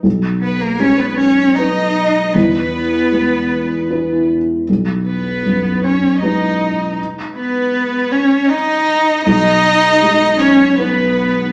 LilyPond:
<<
  \new Staff \with { instrumentName = "Violin section" } { \time 3/4 \key b \major \tempo 4 = 78 r8 b'16 ais'16 cis''16 b'16 cis''8 dis''4 | b'2~ b'8 r8 | r8 b'4 cis''8 dis''4 | r8 b'4 cis''8 dis''4 |
dis''4. cis''8 b'4 | }
  \new Staff \with { instrumentName = "Cello" } { \time 3/4 \key b \major r8 b16 ais16 cis'16 b16 cis'8 dis'4 | b2~ b8 r8 | r8 b4 cis'8 dis'4 | r8 b4 cis'8 dis'4 |
dis'4. cis'8 b4 | }
  \new Staff \with { instrumentName = "Felt piano" } { \clef bass \time 3/4 \key b \major b,,4 gis4 <dis' b'>4 | e,4 gis4 <e' b'>4 | b,,4 fis,4 <gis dis' b'>4~ | <gis dis' b'>2. |
b,,4 gis4 <dis' b'>4 | }
>>